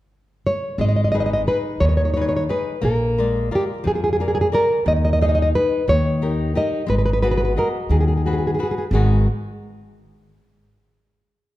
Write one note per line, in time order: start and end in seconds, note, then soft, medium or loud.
0.47 0.80 C#5 medium
0.78 1.45 G#1 medium
0.78 1.46 G#3 soft
0.78 0.87 D#5 medium
0.89 0.95 D#5 soft
0.96 1.03 D#5 medium
1.04 1.11 D#5 medium
1.12 1.46 D#4 soft
1.12 1.46 G#4 soft
1.12 1.47 B4 soft
1.12 1.19 D#5 medium
1.20 1.25 D#5 medium
1.26 1.32 D#5 medium
1.33 1.41 D#5 medium
1.47 2.02 D#4 soft
1.47 2.03 G#4 soft
1.47 1.57 B4 medium
1.47 2.03 B4 soft
1.80 2.46 D#2 medium
1.80 2.47 D#3 soft
1.80 1.88 C#5 medium
1.89 1.96 C#5 medium
1.97 2.04 C#5 medium
2.05 2.12 C#5 medium
2.14 2.48 D#4 soft
2.14 2.48 G#4 soft
2.14 2.49 B4 soft
2.14 2.20 C#5 medium
2.22 2.27 C#5 medium
2.29 2.35 C#5 medium
2.37 2.43 C#5 medium
2.49 2.75 D#4 soft
2.49 2.76 G#4 soft
2.49 2.76 B4 soft
2.49 2.81 B4 medium
2.82 3.49 A#1 medium
2.82 3.49 A#3 medium
2.82 3.48 A#4 medium
3.18 3.71 G#3 soft
3.18 3.51 A#4 soft
3.18 3.51 D5 soft
3.51 4.06 F4 soft
3.51 4.06 A#4 soft
3.51 4.07 D5 soft
3.55 3.64 G4 medium
3.84 4.51 F2 medium
3.84 4.50 F3 soft
3.84 3.93 G#4 medium
3.95 4.01 G#4 medium
4.04 4.10 G#4 medium
4.13 4.18 G#4 medium
4.20 4.51 G#4 soft
4.20 4.25 G#4 medium
4.20 4.51 A#4 soft
4.20 4.52 D5 soft
4.28 4.33 G#4 medium
4.35 4.40 G#4 medium
4.41 4.47 G#4 medium
4.52 4.78 G#4 soft
4.52 4.79 A#4 soft
4.52 4.87 A#4 medium
4.52 4.79 D5 soft
4.86 5.52 D#2 medium
4.86 5.52 D#3 medium
4.86 4.94 D#5 medium
4.96 5.02 D#5 medium
5.05 5.11 D#5 medium
5.13 5.19 D#5 medium
5.21 5.54 D#4 soft
5.21 5.54 G#4 soft
5.21 5.27 D#5 medium
5.29 5.34 D#5 medium
5.35 5.41 D#5 medium
5.42 5.48 D#5 medium
5.55 5.81 D#4 soft
5.55 5.81 G#4 soft
5.55 5.85 B4 medium
5.88 6.54 D#2 medium
5.88 6.54 D#3 soft
5.88 6.53 C#5 medium
6.22 6.54 D#4 soft
6.22 6.55 G4 soft
6.22 6.55 A#4 soft
6.55 6.82 D#4 soft
6.55 6.82 G4 soft
6.55 6.82 A#4 soft
6.55 6.87 D#5 medium
6.87 7.55 G#1 medium
6.87 7.54 G#3 medium
6.87 6.97 B4 medium
6.98 7.04 B4 soft
7.06 7.12 B4 medium
7.13 7.21 B4 medium
7.22 7.77 B3 soft
7.22 7.55 F#4 soft
7.22 7.56 G#4 soft
7.22 7.29 B4 medium
7.31 7.36 B4 medium
7.37 7.44 B4 medium
7.45 7.52 B4 medium
7.56 8.12 F#4 soft
7.56 8.12 G#4 soft
7.56 7.67 A#4 medium
7.56 8.13 D#5 soft
7.89 8.56 D#2 medium
7.89 8.58 D#3 medium
7.89 7.99 G#4 medium
8.01 8.07 G#4 soft
8.08 8.15 G#4 soft
8.17 8.24 G#4 soft
8.26 8.58 F#4 soft
8.26 8.32 G#4 soft
8.26 8.58 G#4 soft
8.26 8.59 B4 soft
8.33 8.37 G#4 soft
8.39 8.45 G#4 soft
8.47 8.53 G#4 soft
8.54 8.61 G#4 soft
8.59 8.86 F#4 soft
8.59 8.86 G#4 soft
8.59 8.86 B4 soft
8.63 8.69 G#4 soft
8.71 8.76 G#4 soft
8.78 8.84 G#4 soft
8.91 9.25 G#1 medium
8.91 9.26 G#2 soft
8.91 9.26 D#3 soft
8.91 9.27 G#3 soft
8.91 9.27 B3 soft
8.91 9.27 D#4 soft
8.91 9.27 F#4 medium
8.91 9.27 G#4 soft